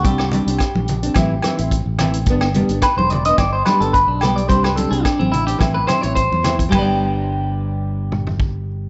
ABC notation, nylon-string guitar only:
X:1
M:4/4
L:1/16
Q:"Swing 16ths" 1/4=108
K:G
V:1 name="Nylon-string guitar"
[G,CD] z [G,CD] [CD] z3 [CD] [E,CE] z [E,CE] [CE] z2 [E,CE] z | [B,D] z [G,B,D] [B,D] z3 [B,D] z2 [G,B,D] [B,D] z2 [G,B,] z | [G,CD] z [G,CD] [CD] z3 [CD] [E,CE] z [E,CE] [CE] z2 [E,CE] z | [G,B,D]16 |]